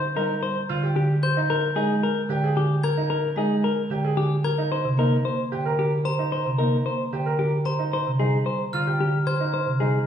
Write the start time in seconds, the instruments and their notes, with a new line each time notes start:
0.16 marimba G3, grand piano D#4, clean electric guitar A#4
0.43 clean electric guitar C5
0.69 marimba D3, grand piano F4
0.83 grand piano G4
0.95 marimba D3, clean electric guitar G4
1.23 clean electric guitar C5, glockenspiel G6
1.37 grand piano D#4
1.50 clean electric guitar A#4
1.75 marimba G#3, grand piano D#4, clean electric guitar G#4
2.03 clean electric guitar A#4
2.29 marimba D3, grand piano G4
2.44 grand piano G#4
2.56 marimba D3, clean electric guitar G4
2.84 clean electric guitar A#4, glockenspiel G#6
2.97 grand piano D#4
3.10 clean electric guitar A#4
3.36 marimba G#3, grand piano D#4, clean electric guitar G#4
3.64 clean electric guitar A#4
3.90 marimba D3, grand piano G4
4.05 grand piano G#4
4.17 marimba D3, clean electric guitar G4
4.44 clean electric guitar A#4, glockenspiel G#6
4.58 grand piano D#4
4.72 clean electric guitar C5
4.85 marimba C3
4.97 marimba A#3, grand piano D#4, clean electric guitar A#4
5.25 clean electric guitar C5
5.52 marimba D3, grand piano G4
5.65 grand piano A#4
5.79 marimba D3, clean electric guitar G4
6.05 clean electric guitar C5, glockenspiel A#5
6.19 grand piano D#4
6.32 clean electric guitar C5
6.46 marimba C3
6.58 marimba A#3, grand piano D#4, clean electric guitar A#4
6.86 clean electric guitar C5
7.13 marimba D3, grand piano G4
7.26 grand piano A#4
7.39 marimba D3, clean electric guitar G4
7.65 clean electric guitar C5, glockenspiel A#5
7.79 grand piano D#4
7.93 clean electric guitar C5
8.07 marimba C3
8.19 marimba G3, grand piano D#4, clean electric guitar G#4
8.46 clean electric guitar C5
8.73 marimba D3, grand piano F4, glockenspiel F6
8.87 grand piano G4
9.00 marimba D3, clean electric guitar G4
9.27 clean electric guitar C5, glockenspiel G#6
9.40 grand piano D#4
9.54 clean electric guitar C5
9.67 marimba C3
9.80 marimba G3, grand piano D#4, clean electric guitar G#4